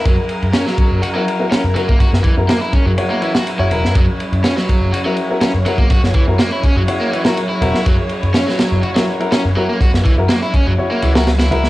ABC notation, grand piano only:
X:1
M:4/4
L:1/16
Q:1/4=123
K:F#mix
V:1 name="Grand piano"
z8 z [EFA]2 [EFA]2 z [EFA] z | z3 [EFA] z4 [EFc]3 z2 [EFc] [EFA]2 | z8 z [EFA]2 [EFA]2 z [EFA] z | z3 [EFA] z4 [EFc]3 [EFA] z2 [EFA] z |
z8 z [EFA]2 [EFA]2 z [EFA] z | z3 [EFA] z4 [EFc]3 [EFA] z2 [EFA] z |]